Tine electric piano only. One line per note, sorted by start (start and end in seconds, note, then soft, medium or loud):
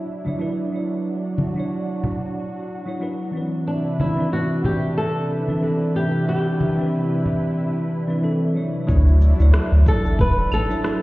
0.00 0.21 F#3 medium
0.00 0.22 D4 medium
0.00 0.23 E4 medium
0.00 0.24 C#5 medium
0.25 0.38 F#3 medium
0.25 0.38 D4 medium
0.25 0.39 E4 medium
0.25 0.39 C#5 medium
0.39 0.69 F#3 medium
0.39 0.69 D4 medium
0.39 0.70 E4 medium
0.39 0.70 B4 medium
0.70 1.51 F#3 medium
0.70 1.52 D4 medium
0.70 1.53 E4 medium
0.76 1.54 C#5 medium
1.54 2.82 F#3 medium
1.54 2.83 D4 medium
1.54 2.83 E4 medium
1.60 2.84 C#5 medium
2.86 2.99 F#3 medium
2.86 2.99 D4 medium
2.86 3.00 E4 medium
2.86 3.00 C#5 medium
3.00 3.30 F#3 medium
3.00 3.31 D4 medium
3.00 3.31 E4 medium
3.00 3.31 B4 medium
3.31 4.12 E3 medium
3.31 4.13 C4 medium
3.31 4.14 D4 medium
3.37 4.15 B4 medium
4.15 5.42 E3 medium
4.15 5.43 C4 medium
4.15 5.44 D4 medium
4.20 5.45 B4 medium
5.47 5.60 E3 medium
5.47 5.60 C4 medium
5.47 5.61 D4 medium
5.47 5.61 B4 medium
5.61 5.91 E3 medium
5.61 5.92 C4 medium
5.61 5.92 D4 medium
5.61 5.92 A4 medium
5.92 6.73 E3 medium
5.92 6.74 C4 medium
5.92 6.75 D4 medium
5.97 6.75 B4 medium
6.76 8.03 E3 medium
6.76 8.04 C4 medium
6.76 8.05 D4 medium
6.81 8.06 B4 medium
8.07 8.20 E3 medium
8.07 8.21 C4 medium
8.07 8.21 D4 medium
8.07 8.22 B4 medium
8.21 8.52 E3 medium
8.21 8.52 C4 medium
8.21 8.53 D4 medium
8.21 8.53 A4 loud
8.54 8.86 F#3 medium
8.54 8.87 D4 medium
8.54 8.88 E4 medium
8.54 8.89 C#5 medium
8.87 9.31 F#3 loud
8.87 9.32 D4 medium
8.87 9.32 E4 medium
8.87 9.33 C#5 loud
9.37 10.64 F#3 medium
9.37 10.65 D4 medium
9.37 10.66 E4 medium
9.42 10.67 C#5 medium
10.69 10.81 F#3 medium
10.69 10.82 D4 medium
10.69 10.82 E4 medium
10.69 10.83 C#5 medium
10.83 11.02 F#3 medium
10.83 11.02 D4 medium
10.83 11.02 E4 medium
10.83 11.02 B4 loud